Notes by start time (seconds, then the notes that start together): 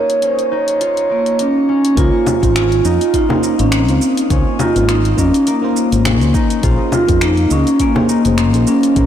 Already playing: A#3 C#4 D#4 F4 G#4 C#5
0.10 closed hi-hat
0.22 C#4 C5, closed hi-hat
0.39 closed hi-hat
0.51 D#4 C#5
0.68 closed hi-hat
0.81 F4, closed hi-hat
0.97 closed hi-hat
1.10 A#3 D#4
1.26 closed hi-hat
1.39 A#3 C#4, closed hi-hat
1.69 C#4
1.85 closed hi-hat
1.95 C#2 A#3 C#4 D#4 F4 C5, kick, closed hi-hat, shaker
2.27 low conga, shaker
2.41 G#1 A#3 C#4 D#4 F4 C5, kick, closed hi-hat, shaker
2.56 C#4 F4, finger snap, closed hi-hat, shaker
2.72 closed hi-hat
2.84 F2 A#3 C#4 D#4 F4 D#5, shaker
3.01 closed hi-hat, shaker
3.14 D#4 F4, kick, closed hi-hat, shaker
3.29 A#3 C#4 D#4 F4 C5, low conga
3.43 A#3, shaker
3.58 G#1 A#3 C#4 D#4 F4 C5, closed hi-hat, shaker
3.72 A#3 C4, finger snap, closed hi-hat, shaker
3.87 C#2 A#3 C#4 D#4 F4 C5, closed hi-hat, shaker
4.02 shaker
4.17 closed hi-hat, shaker
4.29 C#2 A#3 C#4 D#4 F4 C5, kick, closed hi-hat, shaker
4.59 D#4 F4, low conga, shaker
4.75 G#1 A#3 C#4 D#4 F4 C5, closed hi-hat, shaker
4.88 D#4 F4, finger snap, closed hi-hat, shaker
5.05 closed hi-hat
5.16 F2 A#3 C#4 D#4 F4 D#5, kick, shaker
5.34 closed hi-hat, shaker
5.47 A#3, closed hi-hat, shaker
5.62 A#3 C#4 D#4 F4 C5
5.77 shaker
5.91 G#1 A#3 C#4 D#4 F4 C5, closed hi-hat, shaker
6.05 C#4, finger snap, closed hi-hat, low conga, shaker
6.20 C#2 A#3 C#4 D#4 F4 C5, closed hi-hat, shaker
6.34 D#4, kick, shaker
6.50 closed hi-hat, shaker
6.62 A#1 A#3 C#4 D#4 F4 G#4 C5, kick, closed hi-hat, shaker
6.92 A#3 F4, low conga, shaker
7.07 F2 A#3 C#4 D#4 G#4 C5, kick, closed hi-hat, shaker
7.21 A#3 D#4, finger snap, closed hi-hat, shaker
7.37 closed hi-hat
7.49 C#2 A#3 C#4 D#4 G#4 D#5, shaker
7.67 closed hi-hat, shaker
7.80 A#3 C#4, kick, closed hi-hat, shaker
7.95 A#3 C#4 D#4 G#4 C5, low conga
8.09 A#3 D#4, shaker
8.24 F1 A#3 C#4 D#4 G#4 C5, closed hi-hat, shaker
8.38 F4, finger snap, closed hi-hat, shaker
8.53 A#1 A#3 C#4 D#4 G#4 C5, closed hi-hat, shaker
8.67 A#3 C#4, shaker
8.83 closed hi-hat, shaker
8.94 A#1 A#3 C#4 D#4 G#4 C5, kick, closed hi-hat, shaker